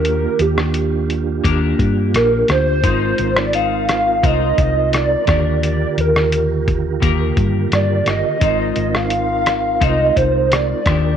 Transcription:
<<
  \new Staff \with { instrumentName = "Soft synth lead" } { \time 4/4 \key aes \lydian \tempo 4 = 86 bes'8 g'4 r4. bes'8 c''8~ | c''8. d''16 f''4 ees''4 d''4 | d''8 bes'4 r4. d''8 ees''8~ | ees''8. f''4~ f''16 ees''8 c''8 d''4 | }
  \new Staff \with { instrumentName = "Tonewheel organ" } { \time 4/4 \key aes \lydian <bes d' f' g'>1 | <c' ees' f' bes'>2.~ <c' ees' f' bes'>8 <d f' g' bes'>8~ | <d f' g' bes'>1 | <c' ees' f' bes'>2.~ <c' ees' f' bes'>8 <d' f' bes' g''>8 | }
  \new Staff \with { instrumentName = "Clean electric guitar" } { \time 4/4 \key aes \lydian <ees bes d' g' bes'>2 <bes d' g' bes'>2 | <aes ees' f' c''>4 <aes ees' f' c''>4 <aes ees' f' c''>4. <ees bes d' g' bes'>8~ | <ees bes d' g' bes'>2 <ees bes g' bes'>2 | <aes ees' f' c''>2 <aes ees' f' c''>4. <ees bes d' g' bes'>8 | }
  \new Staff \with { instrumentName = "Fingered electric bass" } { \clef bass \time 4/4 \key aes \lydian ees,8 ees,4. ees,8 g,8 bes,,8 d,8 | aes,,8 aes,,4. c,8 c,4 ees,8~ | ees,8 ees,4. ees,8 g,8 g,8 g,,16 r16 | aes,,8 aes,,4. c,8 c,4 ees,8 | }
  \new DrumStaff \with { instrumentName = "Drums" } \drummode { \time 4/4 hh8 hh16 ss16 hh8 hh8 <hh bd>8 <hh bd>8 <hh ss>8 <hh ss>8 | <hh bd>8 hh16 ss16 hh8 <hh ss>8 <hh bd>8 <hh bd>8 <hh ss>8 <hh bd ss>8 | hh8 hh16 ss16 hh8 <hh bd>8 <hh bd>8 <hh bd>8 <hh ss>8 <hh ss>8 | <hh bd>8 hh16 ss16 hh8 <hh ss>8 <hh bd>8 <hh bd>8 <hh ss>8 <hh bd ss>8 | }
>>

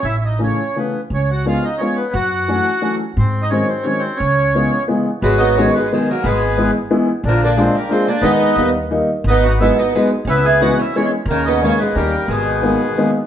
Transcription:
<<
  \new Staff \with { instrumentName = "Accordion" } { \time 3/4 \key cis \minor \tempo 4 = 177 e'16. e'32 dis'8 cis'4 b8. r16 | cis'8 fis'8 eis'8 dis'8 cis'8 b8 | fis'2~ fis'8 r8 | bis8. dis'16 cis'8 bis8 cis'8 bis8 |
cis'2 r4 | \key gis \minor b8 dis'8 cis'8 b8 gis8 ais8 | b4. r4. | ais8 d'8 bis8 ais8 bis8 d'8 |
dis'4. r4. | dis'8 fis'8 e'8 dis'8 b8 r8 | e'8 gis'8 fis'8 e'8 cis'8 r8 | ais8 dis'8 cis'8 b8 ais4 |
gis2~ gis8 r8 | }
  \new Staff \with { instrumentName = "Accordion" } { \clef bass \time 3/4 \key cis \minor r2. | r2. | r2. | r2. |
r2. | \key gis \minor fis4. r4. | gis4. r4. | d4. r4. |
b4. r4. | b4. r4. | b4. r4. | cis4. r8 g4 |
b,2~ b,8 r8 | }
  \new Staff \with { instrumentName = "Oud" } { \clef bass \time 3/4 \key cis \minor r2. | r2. | r2. | r2. |
r2. | \key gis \minor gis8 b8 gis8 gis8 dis8 fis8 | gis4. r4. | eis8 ais8 gis8 g8 gis8 ais8 |
b4. r4. | b8 dis'8 b8 b8 gis8 r8 | cis'8 e'8 cis'8 cis'8 gis8 r8 | dis8 b8 ais8 gis8 g4 |
dis2~ dis8 r8 | }
  \new Staff \with { instrumentName = "Upright piano" } { \clef bass \time 3/4 \key cis \minor r4 <cis e a cis'>8 r8 <cis e a cis'>8 r8 | r4 <eis gis b cis'>8 r8 <eis gis b cis'>8 r8 | r4 <e fis a cis'>8 r8 <e fis a cis'>8 r8 | r4 <dis fis gis bis>8 r8 <dis fis gis bis>8 r8 |
r4 <cis e gis b>8 r8 <cis e gis b>8 r8 | \key gis \minor r4 <dis fis gis b>8 r8 <dis fis gis b>8 r8 | r4 <e gis b e'>8 r8 <e gis b e'>8 r8 | r4 <eis gis ais d'>8 r8 <eis gis ais d'>8 r8 |
<dis gis b dis'>4 <dis g ais dis'>8 r8 <dis g ais dis'>8 r8 | r4 <fis gis b dis'>8 r8 <fis gis b dis'>8 r8 | r4 <e gis b cis'>8 r8 <e gis b cis'>8 r8 | r4 <dis gis ais cis'>8 r8 <dis g ais cis'>8 r8 |
r4 <dis gis ais b>8 r8 <dis gis ais b>8 r8 | }
  \new Staff \with { instrumentName = "Upright bass" } { \clef bass \time 3/4 \key cis \minor a,,2 r4 | cis,2 r4 | fis,2 r4 | gis,2 r4 |
cis,2 r4 | \key gis \minor gis,,2 r4 | gis,,2 r4 | ais,,2 r4 |
dis,4 dis,2 | gis,,2 r4 | cis,2 r4 | dis,2 dis,4 |
gis,,2 r4 | }
>>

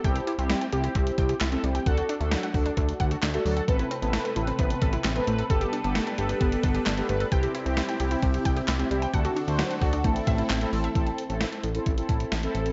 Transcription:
<<
  \new Staff \with { instrumentName = "Analog polysynth" } { \time 4/4 \key a \dorian \tempo 4 = 132 <c' e' g'>8 r16 <c' e' g'>8 r16 <c' e' g'>4. r16 <c' e' a'>16 <c' e' g'>8 | <d' fis' a'>8 r16 <d' fis' a'>8 r16 <d' fis' a'>4. r16 <d' fis' a'>16 <d' fis' a'>8 | <c' a' b'>8 r16 <c' a' b'>8 r16 <c' a' b'>4. r16 <c' a' b'>16 <c' a' b'>8 | <b g' a'>8 r16 <b g' a'>8 r16 <b g' a'>4. r16 <b g' a'>16 <b g' b'>8 |
<c' e' g'>8 r16 <c' e' g'>8 r16 <c' e' g'>4. r16 <c' e' g'>16 <c' e' g'>8 | <d' fis' a'>8 r16 <d' fis' c''>8 r16 <d' fis' a'>8 <c' e' a'>4 r16 <c' e' a'>16 <c' e' a'>8 | <c' e' a'>8 r16 <c' e' a'>8. r16 <c' e' a'>8 <c' e' a'>8. r16 <c' e' a'>8 r16 | }
  \new Staff \with { instrumentName = "Synth arpeggio sound" } { \time 4/4 \key a \dorian g''16 g'16 e'16 c'16 g16 g''16 g'16 e'16 c'16 r16 g''16 g'16 e'16 c'16 g16 g''16 | fis''16 fis'16 d'16 a16 fis16 fis''16 fis'16 d'16 a16 r16 fis''16 fis'16 d'16 a16 fis16 fis''16 | a'16 e'16 c'16 b16 a16 a'16 e'16 c'16 b16 r16 a'16 e'16 c'16 b16 a16 a'16 | a'16 g'16 d'16 b16 a16 a'16 g'16 d'16 b16 r16 a'16 g'16 d'16 b16 a16 a'16 |
g''16 g'16 e'16 c'16 g16 g''16 g'16 e'16 c'16 r16 g''16 g'16 e'16 c'16 g16 g''16 | fis''16 fis'16 d'16 a16 fis16 fis''16 fis'16 d'16 a16 r16 e''16 e'16 c'16 a16 e16 e''16 | r1 | }
  \new Staff \with { instrumentName = "Analog synth pad" } { \time 4/4 \key a \dorian r1 | r1 | <c a b'>1 | <g d' a' b'>1 |
<c c' e' g'>1 | <d d' fis' a'>2 <a c' e'>2 | r1 | }
  \new Staff \with { instrumentName = "Analog synth bass" } { \clef bass \time 4/4 \key a \dorian c,8 r16 c,8 r16 c,8 c,8 c,8 c,8 c,8 | d,8 r16 d,8 r16 d,8 d,8 d,8 d,8 d,8 | a,,8 r16 a,,8 r16 a,,8 a,,8 a,,8 a,,8 a,,8 | g,,8 r16 g,,8 r16 g,,8 g,,8 g,,8 g,,8 g,,8 |
c,8 r16 c,8 r16 c,8 c,8 c,8 c,8 c,8 | d,8 r16 d,8 r16 d,8 a,,8 a,,8 a,,8 a,,8 | a,,8 r16 a,,8 r16 a,,8 a,,8 a,,8 a,,8 a,,8 | }
  \new DrumStaff \with { instrumentName = "Drums" } \drummode { \time 4/4 <hh bd>16 hh16 hh16 hh16 <hh sn>16 hh16 hh16 hh16 <hh bd>16 hh16 <hh bd>16 hh16 <hc hh sn>16 hh16 hh16 hh16 | <hh bd>16 hh16 hh16 hh16 <hh sn>16 hh16 <hho bd>16 hh16 <hh bd>16 hh16 <hh bd>16 hh16 <hc hh sn>16 hh16 hho16 hh16 | <hh bd>16 hh16 hh16 hh16 <hh sn>16 hh16 hh16 hh16 <hh bd>16 hh16 <hh bd>16 hh16 <hc hh sn>16 hh16 hh16 hh16 | <hh bd>16 hh16 hh16 hh16 <hh sn>16 hh16 hh16 hh16 <hh bd>16 hh16 <hh bd>16 hh16 <hc hh sn>16 hh16 hh16 hh16 |
<hh bd>16 hh16 hh16 hh16 <hh sn>16 hh16 hh16 hh16 <hh bd>16 hh16 <hh bd>16 hh16 <hc hh sn>16 hh16 hh16 hh16 | <hh bd>16 hh16 hh16 hh16 <hh sn>16 hh16 <hho bd>16 hh16 <hh bd>16 hh16 <hh bd>16 hh16 <hc hh sn>16 hh16 hho16 hh16 | <hh bd>16 hh16 hh16 hh16 <hh sn>16 hh16 hh16 hh16 <hh bd>16 hh16 <hh bd>16 hh16 <hh sn>16 hh16 hh16 hh16 | }
>>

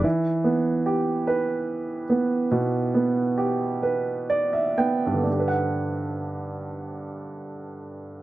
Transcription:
\new Staff \with { instrumentName = "Upright piano" } { \time 6/8 \key e \minor \tempo 4. = 44 << { r2. | r2 d''16 e''16 g''8 | r2. | } \\ { e8 b8 g'8 b'4 b8 | b,8 b8 g'8 b'4 b8 | <g, d d' g' b' fis''>2. | } >> }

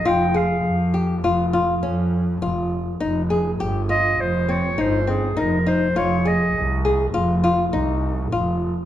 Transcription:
<<
  \new Staff \with { instrumentName = "Clarinet" } { \time 5/4 \key f \minor \tempo 4 = 102 g''8 f''4 r2. r8 | r4. ees''8 c''8 des''8 c''8 aes'8 bes'8 c''8 | des''8 ees''4 r2. r8 | }
  \new Staff \with { instrumentName = "Nylon-string guitar" } { \time 5/4 \key f \minor f'8 aes'4 g'8 f'8 f'8 des'4 f'4 | ees'8 aes'8 g'8 f'4 c'8 ees'8 c'8 ees'8 ees'8 | f'8 aes'4 aes'8 f'8 f'8 ees'4 f'4 | }
  \new Staff \with { instrumentName = "Double bass" } { \clef bass \time 5/4 \key f \minor f,,4 f,4 f,,4 f,4 f,,4 | f,,4 g,,4 f,,4 g,,4 f,,4 | f,,4 c,4 f,,4 c,4 f,,4 | }
>>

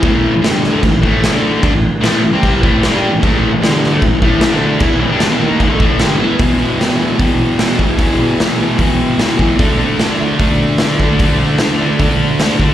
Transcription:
<<
  \new Staff \with { instrumentName = "Distorted electric guitar" } { \clef bass \time 4/4 \key e \minor \tempo 4 = 150 <a, e a>8. <a, e>16 <g, d g>8. <d a>16 <a, e>16 <a, e>16 <a, e a>8. <d a d'>8. | <g d'>16 <a, e>8 r16 <a, e a>8 <a, e>16 <c g c'>8. <a, e a>8. <g d' g'>8 <a, e>16 | <a, e a>8. <a, e>16 <g, d g>8. <d a>16 <a, e>16 <a, e>16 <a, e a>8. <d a d'>8. | <e b e'>8 <a, e>16 <g d'>16 <a, e>16 <e b>16 <dis ais dis'>8 <a, e>16 <d a>16 <a, e a>8 <g, d g>8 <e b e'>8 |
<e, b, e>8 <b, e>8 <e, b, e>8 <b, e>8 <e, b, e>4 <e, b, e>8 <b, e>8 | <e, b, e>8 <b, e>8 <e, b, e>8 <b, e>8 <e, b, e>4 <e, b, e>8 <b, e>8 | <d a d'>8 <a d'>8 <d a d'>8 <a d'>8 <d a d'>4 <d a d'>8 <a d'>8 | <d a d'>8 <a d'>8 <d a d'>8 <a d'>8 <d a d'>4 <d a d'>8 <a d'>8 | }
  \new DrumStaff \with { instrumentName = "Drums" } \drummode { \time 4/4 <cymc bd>4 <cymc sn>8 sn8 <cymc bd>8 bd8 <cymc sn>4 | <cymc bd>4 <cymc sn>4 <cymc bd>8 bd8 <cymc sn>4 | <cymc bd>4 <cymc sn>8 sn8 <cymc bd>8 bd8 <cymc sn>4 | <cymc bd>4 <cymc sn>4 <cymc bd>8 bd8 <cymc sn>4 |
<hho bd>4 <hho sn>4 <hho bd>4 <hho sn>8 bd8 | <hho bd>4 <hho sn>4 <hho bd>4 <hho sn>8 bd8 | <hho bd>4 <hho sn>4 <hho bd>4 <hho sn>8 bd8 | <hho bd>4 <hho sn>4 <hho bd>4 <hho sn>8 bd8 | }
>>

